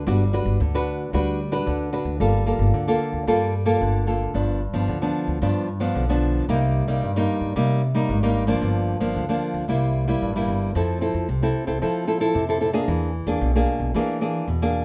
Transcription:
0.07 G1 G3 D4 F#4 B4
0.33 D4 F#4 B4
0.46 G1
0.60 D2 D3
0.74 D4 F#4 B4
1.13 D2 G3 D4 F#4 B4
1.52 D4 F#4 B4
1.66 D2 D3
1.93 D4 F#4 B4
2.05 D2
2.20 G1 G3 A#3 F4 A4
2.46 A#3 F4 A4
2.59 G1
2.74 D2 D3
2.88 A#3 F4 A4
3.13 D2
3.27 G2 G3 A#3 F4 A4
3.66 A#3 F4 A4
3.81 G1 D3
4.07 A#3 F4 A4
4.34 G1 G2 F3 B3 D4
4.74 G1 F3 B3 D4
4.88 D2 D3
5.02 F3 B3 D4
5.27 D2
5.42 G2 F3 B3 D4
5.80 F3 B3 D4
5.95 B1 D3
6.09 F3 B3 D4
6.49 C2 C3 G3 A#3 D#4
6.87 C2 G3 A#3 D#4
7.02 G2
7.16 G3 A#3 D#4
7.41 G2
7.56 C3 G3 A#3 D#4
7.95 G3 A#3 D#4
8.09 G#1 G2
8.23 G3 A#3 D#4
8.47 F3 A#3 D4
8.62 G1 G2
9.00 G1 F3 A#3 D4
9.15 D2 D3
9.29 F3 A#3 D4
9.54 D2
9.68 C2 C3 G3 A#3 E4
10.08 G3 A#3 E4
10.22 A1 G2
10.36 G3 A#3 E4
10.48 G1
10.75 F2 F3 C4 E4 A4
11.01 C4 E4 A4
11.14 F2
11.29 C2 C3
11.43 C4 E4 A4
11.67 C2 C4 E4 A4
11.82 F3 C4 E4 A4
12.07 C4 E4 A4
12.20 C4 E4 A4
12.35 F2 C3
12.49 C4 E4 A4
12.61 C4 E4 A4
12.73 A#3 D4 G#4
12.88 E2 E3
13.27 E2 A#3 D4 G#4
13.41 B1 B2
13.55 A#3 D4 G#4
13.80 B1
13.94 E3 A#3 D4 G#4
14.21 A#3 D4 G#4
14.48 E2 B2
14.62 A#3 D4 G#4

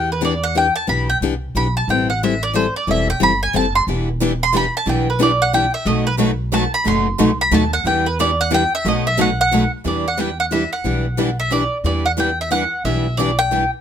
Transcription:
Already playing: E2
0.12 B4
0.21 E3 B3 D4 G4 D5
0.44 F#5
0.55 E3 B3 D4 G4 G5
0.76 A5
0.87 B1 E3 B3 D4 G4 B5
1.10 G5
1.21 C2 E3 B3 D4 G4
1.55 B1 E3 B3 D4 G4 B5
1.77 A5
1.88 A1 E3 G3 C4 E4 A4 G5
2.10 F#5
2.23 E3 G3 C4 E4 A4 E5
2.43 D5
2.53 E3 G3 C4 E4 A4 C5
2.76 D5
2.87 E1 E3 G3 C4 E4 A4 E5
3.10 G5
3.20 G1 E3 G3 C4 E4 A4 B5
3.43 G#5
3.53 F#1 E3 G3 C4 E4 A4 A5
3.75 C6
3.87 E1 E3 G3 B3 D4 E4 G4 B4
4.21 E3 G3 B3 D4 E4 G4 B4
4.43 C6
4.53 E3 G3 B3 D4 E4 G4 B4 B5
4.77 A5
4.86 B1 E3 G3 B3 D4 E4 G4 B4 G5
5.10 B4
5.19 E3 G3 B3 D4 E4 G4 B4 D5
5.42 F#5
5.53 E3 G3 B3 D4 E4 G4 B4 G5
5.74 E5
5.85 B1 B2 F#3 A3 D#4 F#4 B4 D#5
6.07 B4
6.18 B2 F#3 A3 D#4 F#4 B4
6.52 B2 F#3 A3 D#4 F#4 B4 A5
6.74 B5
6.86 F#1 B2 F#3 A3 D#4 F#4 B4 C6
7.19 C2 B2 F#3 A3 D#4 F#4 B4
7.41 B5
7.51 D#2 B2 F#3 A3 D#4 F#4 B4 A5
7.73 F#5
7.84 E2 E3 G3 B3 D4 E4 G4 B4 G5
8.06 B4
8.20 E3 G3 B3 D4 E4 G4 B4 D5
8.41 F#5
8.51 E3 G3 B3 D4 E4 G4 B4 G5
8.75 E5
8.85 B1 B2 F#3 A3 D#4 F#4 B4 D#5
9.07 E5
9.18 B2 F#3 A3 D#4 F#4 B4 F#5
9.41 F#5
9.51 B2 F#3 A3 D#4 F#4 B4
9.85 E2 E3 G3 B3 D4 E4 G4 B4 D5
10.08 F#5
10.17 E3 G3 B3 D4 E4 G4 B4 G5
10.40 F#5
10.51 E3 G3 B3 D4 E4 G4 B4 E5
10.73 F#5
10.84 B1 E3 G3 B3 D4 E4 G4 B4
11.17 E3 G3 B3 D4 E4 G4 B4
11.40 E5
11.51 E3 G3 B3 D4 E4 G4 B4 D5
11.84 E2 E3 G3 B3 D4 E4 G4 B4 D5
12.06 F#5
12.17 E3 G3 B3 D4 E4 G4 B4 G5
12.41 E5
12.51 E3 G3 B3 D4 E4 G4 B4 F#5
12.84 B1 E3 G3 B3 D4 E4 G4 B4 E5
13.17 E3 G3 B3 D4 E4 G4 B4 D5
13.39 G5
13.51 E3 G3 B3 D4 E4 G4 B4

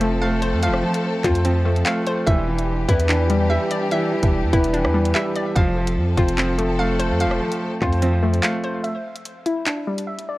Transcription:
Already playing: F1 F3 C4 F4 A4 F5
0.00 F3 A3, closed hi-hat
0.22 A3 F5
0.42 C5, closed hi-hat
0.53 F2
0.63 F3 F5, closed hi-hat
0.68 F1
0.74 cross-stick
0.83 F3
0.94 closed hi-hat
1.24 F2 C4 F4, kick, clap, closed hi-hat
1.35 closed hi-hat
1.44 F3 C4, closed hi-hat
1.65 F3 A3
1.76 closed hi-hat
1.85 A3 F5, clap, closed hi-hat
2.07 C5, closed hi-hat
2.26 E1 E3 D4 G4 E5, kick, closed hi-hat
2.48 E3
2.59 closed hi-hat
2.89 E2 B3 E4, kick, closed hi-hat
3.00 closed hi-hat
3.09 E3 D4, clap, closed hi-hat
3.30 E3 G3, closed hi-hat
3.50 G3 E5
3.71 D5, closed hi-hat
3.91 E3 E5, closed hi-hat
4.12 E3
4.23 E1, kick, closed hi-hat
4.43 E2
4.53 E1 B3 E4, kick, closed hi-hat
4.64 closed hi-hat
4.73 E3 D4, closed hi-hat
4.84 E2, cross-stick
4.94 E3 G3
5.05 closed hi-hat
5.14 G3 E5, clap
5.35 D5, closed hi-hat
5.55 F1 F3 C4 A4 F5, kick, closed hi-hat
5.76 F3
5.87 closed hi-hat
5.97 F2
6.17 F1 C4 F4, kick, closed hi-hat
6.28 closed hi-hat
6.38 F3 C4, clap, closed hi-hat
6.58 F3 A3, closed hi-hat
6.79 A3 F5
6.99 C5, closed hi-hat
7.10 F2
7.20 F3 F5, closed hi-hat
7.26 F1
7.31 cross-stick
7.40 F3
7.52 closed hi-hat
7.82 F2 C4 F4, kick, clap, closed hi-hat
7.93 closed hi-hat
8.02 F3 C4, closed hi-hat
8.22 F3 A3
8.34 closed hi-hat
8.43 A3 F5, clap, closed hi-hat
8.64 C5, closed hi-hat
8.84 E5, closed hi-hat
9.16 closed hi-hat
9.26 closed hi-hat
9.46 E4, closed hi-hat
9.67 D4, clap, closed hi-hat
9.87 G3
9.98 closed hi-hat
10.07 E5
10.19 closed hi-hat
10.29 D5

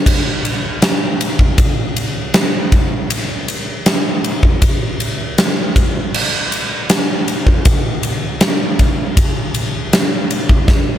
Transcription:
0.06 kick, crash, ride
0.45 ride
0.82 snare, ride
1.21 ride
1.39 kick
1.58 kick, ride
1.96 ride
2.34 snare, ride
2.72 kick, ride
3.10 ride
3.48 ride
3.86 snare, ride
4.24 ride
4.43 kick
4.62 kick, ride
5.00 ride
5.38 snare, ride
5.76 kick, ride
6.14 crash
6.52 ride
6.90 snare, ride
7.28 ride
7.47 kick
7.65 kick, ride
8.03 ride
8.41 snare, ride
8.79 kick, ride
9.17 kick, ride
9.54 ride
9.93 snare, ride
10.31 ride
10.49 kick
10.68 kick, snare

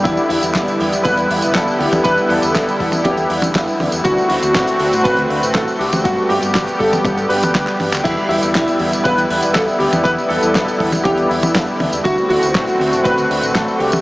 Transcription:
Already playing: D3 G3
0.04 E2 B3 E4, kick, closed hi-hat, tambourine
0.17 tambourine
0.29 E2 E4, open hi-hat
0.43 E2, closed hi-hat, tambourine
0.55 E1, kick, snare, clap, closed hi-hat, tambourine
0.68 closed hi-hat, tambourine
0.80 E2, open hi-hat
0.92 E1, closed hi-hat, tambourine
1.04 E1 B4, kick, closed hi-hat, tambourine
1.17 E2, closed hi-hat, tambourine
1.30 E2, open hi-hat
1.42 E1, closed hi-hat, tambourine
1.54 E1 A4, kick, snare, clap, closed hi-hat, tambourine
1.68 tambourine
1.79 D2 G4, open hi-hat
1.92 E2, closed hi-hat, high tom, tambourine
2.04 E2 B4, kick, closed hi-hat, tambourine
2.18 tambourine
2.29 E2 A4, open hi-hat
2.42 E2, closed hi-hat, tambourine
2.55 E1, kick, snare, clap, closed hi-hat, tambourine
2.69 closed hi-hat, tambourine
2.79 E2 A4, kick, open hi-hat
2.92 E1, closed hi-hat, high tom, tambourine
3.04 E1 G4, kick, closed hi-hat, high tom, tambourine
3.17 E2, closed hi-hat, tambourine
3.29 E2 E4, open hi-hat
3.42 E1, closed hi-hat, high tom, tambourine
3.55 E1, kick, snare, clap, closed hi-hat, tambourine
3.68 tambourine
3.80 D2, open hi-hat, high tom
3.92 E2, closed hi-hat, tambourine
4.04 D2 A3 C4 F#4, kick, closed hi-hat, tambourine
4.18 tambourine
4.29 D2 F#4, open hi-hat
4.43 D2, closed hi-hat, tambourine
4.55 A1, kick, snare, clap, closed hi-hat, tambourine
4.68 closed hi-hat, tambourine
4.79 D2, open hi-hat
4.93 A1, closed hi-hat, tambourine
5.04 A1 B4, kick, closed hi-hat, tambourine
5.17 D2, closed hi-hat, tambourine
5.30 D2, open hi-hat
5.43 A1, closed hi-hat, tambourine
5.54 A1 A4, kick, snare, clap, closed hi-hat, tambourine
5.68 tambourine
5.79 C2 G4, open hi-hat
5.93 D2, closed hi-hat, high tom, tambourine
6.04 G2 G3 B3 F#4 G4, kick, closed hi-hat, tambourine
6.18 tambourine
6.29 G2 G4, open hi-hat
6.43 G2, closed hi-hat, tambourine
6.55 G1, kick, snare, clap, closed hi-hat, tambourine
6.67 closed hi-hat, tambourine
6.79 G2 A4, kick, open hi-hat
6.93 G1, closed hi-hat, high tom, tambourine
7.05 G1, kick, closed hi-hat, high tom, tambourine
7.18 G2, closed hi-hat, tambourine
7.29 G2 B4, open hi-hat
7.43 G1, closed hi-hat, high tom, tambourine
7.55 D2, kick, snare, clap, closed hi-hat, tambourine
7.67 clap, tambourine
7.80 G2, open hi-hat, high tom
7.92 D2, clap, closed hi-hat, tambourine
8.04 E2 D3 B3 E4, kick, closed hi-hat, crash, tambourine
8.18 tambourine
8.29 E2 E4, open hi-hat
8.43 E2, closed hi-hat, tambourine
8.55 E1, kick, snare, clap, closed hi-hat, tambourine
8.68 closed hi-hat, tambourine
8.79 E2, open hi-hat
8.93 E1, closed hi-hat, tambourine
9.04 E1 B4, kick, closed hi-hat, tambourine
9.18 E2, closed hi-hat, tambourine
9.30 E2, open hi-hat
9.42 E1, closed hi-hat, tambourine
9.54 E1 A4, kick, snare, clap, closed hi-hat, tambourine
9.68 tambourine
9.79 D2 G4, open hi-hat
9.93 E2, closed hi-hat, high tom, tambourine
10.04 E2 B4, kick, closed hi-hat, tambourine
10.18 tambourine
10.29 E2 A4, open hi-hat
10.43 E2, closed hi-hat, tambourine
10.55 E1, kick, snare, clap, closed hi-hat, tambourine
10.68 closed hi-hat, tambourine
10.79 E2 A4, kick, open hi-hat
10.92 E1, closed hi-hat, high tom, tambourine
11.04 E1 G4, kick, closed hi-hat, high tom, tambourine
11.17 E2, closed hi-hat, tambourine
11.29 E2 E4, open hi-hat
11.43 E1, closed hi-hat, high tom, tambourine
11.55 E1, kick, snare, clap, closed hi-hat, tambourine
11.67 tambourine
11.80 D2, open hi-hat, high tom
11.93 E2, closed hi-hat, tambourine
12.04 D2 A3 C4 F#4, kick, closed hi-hat, tambourine
12.18 tambourine
12.29 D2 F#4, open hi-hat
12.43 D2, closed hi-hat, tambourine
12.55 A1, kick, snare, clap, closed hi-hat, tambourine
12.67 closed hi-hat, tambourine
12.80 D2, open hi-hat
12.93 A1, closed hi-hat, tambourine
13.04 A1 B4, kick, closed hi-hat, tambourine
13.18 D2, closed hi-hat, tambourine
13.30 D2, open hi-hat
13.43 A1, closed hi-hat, tambourine
13.54 A1 A4, kick, snare, clap, closed hi-hat
13.68 tambourine
13.79 C2 G4, open hi-hat
13.92 D2, closed hi-hat, high tom, tambourine

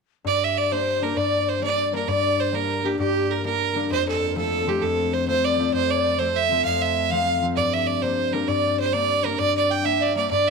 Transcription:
0.24 G2 D5
0.42 E5
0.57 D5
0.71 G3 A#3 D4 C5
1.02 G3 A#3 D4 A#4
1.16 G2 D5
1.48 C5
1.62 G3 A#3 D4 D5
1.93 G3 A#3 D4 A#4
2.08 G2 D5
2.40 C5
2.52 G3 A#3 D4 A#4
2.84 G3 A#3 D4 G4
2.99 G2 G4
3.30 A#4
3.44 G3 A#3 D4 A#4
3.75 G3 A#3 D4
3.90 F2 C5
4.08 A4
4.29 A#4
4.36 F3 A3 C4 A4
4.66 F3 A3 C4 G4
4.82 F2 A4
5.13 C5
5.27 F3 A3 C4 C5
5.45 D5
5.59 F3 A3 C4
5.73 F2 C5
5.90 D5
6.19 F3 A3 C4 C5
6.36 E5
6.51 F3 A3 C4
6.64 F2 F5
6.81 E5
7.10 F3 A3 C4 F5
7.42 F3 A3 C4
7.53 G2 D5 E5
7.57 D5
7.74 E5
7.87 D5
8.02 G3 A#3 D4 C5
8.33 G3 A#3 D4 A#4
8.48 G2 D5
8.79 C5
8.92 G3 A#3 D4 D5
9.25 G3 A#3 D4 A#4
9.39 G2 D5
9.55 D5
9.70 G5
9.84 G3 A#3 D4 E5
10.00 D5
10.15 G3 A#3 D4 D5
10.29 G2 D5

